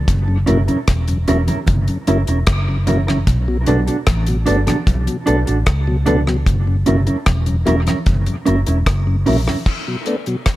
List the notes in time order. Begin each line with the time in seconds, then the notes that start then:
0.08 F#1, kick, closed hi-hat, low conga
0.28 F#2 C#3
0.46 F#1 F#3 A#3 C#4 E4 A#4, closed hi-hat, low conga
0.68 F#2 C#3 C#4 E4 A#4, closed hi-hat
0.88 E1, kick, cross-stick, closed hi-hat, high conga
1.08 F#2 C#3, closed hi-hat
1.28 E1 F#3 A#3 C#4 E4 A#4, closed hi-hat
1.47 F#2 C#3 C#4 E4 A#4, closed hi-hat, high conga
1.66 F#1, kick, closed hi-hat, high conga, low conga
1.88 F#2 C#3, closed hi-hat
2.07 F#1 F#3 A#3 C#4 E4 A#4, closed hi-hat
2.27 E1 C#4 E4 A#4, closed hi-hat
2.47 F#1, kick, cross-stick, closed hi-hat
2.68 F#2 C#3
2.87 F#3 A#3 C#4 E4 A#4, closed hi-hat, high conga, low conga
3.07 F#2 C#3 C#4 E4 A#4, cross-stick, high conga
3.27 B1, kick, closed hi-hat, low conga
3.48 B2 F#3
3.66 B1 A3 B3 D4 F#4 A4, closed hi-hat, low conga
3.86 B2 F#3 D4 F#4 A4, closed hi-hat
4.07 A1, kick, cross-stick, closed hi-hat, high conga
4.26 B2 F#3, closed hi-hat
4.46 G1 A3 B3 D4 F#4 A4, closed hi-hat
4.67 B2 F#3 D4 F#4 A4, cross-stick, closed hi-hat, high conga
4.87 B1, kick, closed hi-hat, high conga, low conga
5.07 B2 F#3, closed hi-hat
5.26 B1 A3 B3 D4 F#4 A4, closed hi-hat
5.46 A1 D4 F#4 A4, closed hi-hat
5.66 C#2, kick, cross-stick, closed hi-hat
5.87 B2 F#3
6.06 A3 B3 D4 F#4 A4, closed hi-hat, high conga, low conga
6.27 B2 F#3, cross-stick, high conga
6.46 F#1, kick, closed hi-hat, low conga
6.67 F#2 C#3
6.86 F#1 F#3 A#3 C#4 E4 A#4, closed hi-hat, low conga
7.07 F#2 C#3 C#4 E4 A#4, closed hi-hat
7.26 E1, kick, cross-stick, closed hi-hat, high conga
7.46 F#2 C#3, closed hi-hat
7.65 E1 F#3 A#3 C#4 E4 A#4, closed hi-hat
7.87 F#2 C#3 C#4 E4 A#4, cross-stick, closed hi-hat, high conga
8.06 F#1, kick, closed hi-hat, high conga, low conga
8.26 F#2 C#3, closed hi-hat
8.46 F#1 F#3 A#3 C#4 E4 A#4, closed hi-hat
8.66 E1 C#4 E4 A#4, closed hi-hat
8.86 F#1, kick, cross-stick, closed hi-hat
9.07 F#2 C#3
9.26 A#1 F#3 A#3 C#4 E4 A#4, open hi-hat, high conga, low conga
9.47 F#2 C#3 C#4 E4 A#4, cross-stick, high conga
9.66 kick, crash
9.88 B2 F#3
10.06 A3 B3 D4, closed hi-hat
10.26 B2 F#3, closed hi-hat
10.46 kick, cross-stick, closed hi-hat